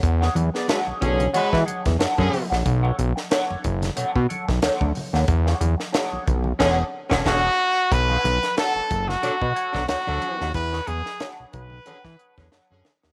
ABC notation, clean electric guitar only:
X:1
M:4/4
L:1/16
Q:"Swing 16ths" 1/4=91
K:Bdor
V:1 name="Clean electric guitar"
z [DGcf] z2 [DGcf]2 z2 [DGcf] z [DGcf] z [DGcf] z2 [DGcf] | z [DAcf] z2 [DAcf]2 z2 [DAcf] z [DAcf] z [DAcf] z2 [DAcf] | z [DGcf] z2 [DGcf]2 z2 [DGcf]2 z [DGcf] [DGcf]2 z2 | z [DAcf] z2 [DAcf]2 z2 [DAcf] z [DAcf] z [DAcf] z2 [DAcf] |
z [DGcf] z2 [DGcf]2 z2 [DGcf] z [DGcf] z [DGcf] z2 [DGcf] |]